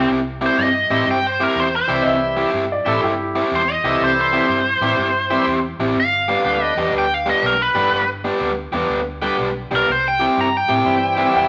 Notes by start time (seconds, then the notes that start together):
Already playing: C3 C4 E4 G4
0.10 C2
0.41 C3 C4 E4 G4
0.46 C5
0.58 G2 D#5
0.90 A2 C3 E3 G3 C4 E4 G4
1.07 G2
1.11 G5
1.27 C5
1.40 C3 C4 E4 G4 A#4
1.56 E2
1.60 C5
1.76 C5
1.87 C2 C3 E3 G3 C4 E4 G4
2.02 C2 D#5
2.08 E5
2.37 C3 C4 E4 G4
2.54 G2
2.72 D5
2.85 A2 C3 E3 G3 C4 E4 G4 A4
3.03 G2 E4 G4
3.35 C3 C4 E4 G4
3.52 E2 C5
3.72 D#5
3.84 C2 C3 E3 G3 C4 E4 G4 A4
4.00 C2
4.04 C5
4.21 C5
4.33 C3 C4 E4 G4
4.49 G2
4.81 A2 C3 E3 G3 C4 E4 G4
4.98 G2
5.30 C3 E3 G3 C4 E4 G4
5.47 E2
5.79 A1 C3 C4 E4 G4
5.95 G1
6.00 F5
6.28 G3 B3 D4 G4
6.44 D2 D3 G3 B3 D4 G4
6.63 D#5
6.77 E2 G3 B3 D4 G4
6.93 D2
6.98 G5
7.14 F5
7.26 G3 B3 D4 G4 D#5
7.43 B1 A#4
7.62 B4
7.74 G1 D3 G3 B3 D4 E4 G4
7.92 G1
8.24 G3 B3 D4 G4
8.41 D2
8.73 E2 G3 B3 D4 G4
8.90 D2
9.22 D3 G3 B3 D4 G4
9.39 B1
9.71 B1 G3 B3 D4 G4
9.76 A#4
9.88 C2 C5
10.08 G5
10.20 C3 C4 E4 G4
10.38 G2 A#5
10.57 G5
10.69 A2 C3 C4 E4 G4
10.85 G2 E3 G3 C4 E4 G4
11.17 C3 C4 E4 G4
11.32 E2 F#5
11.37 G5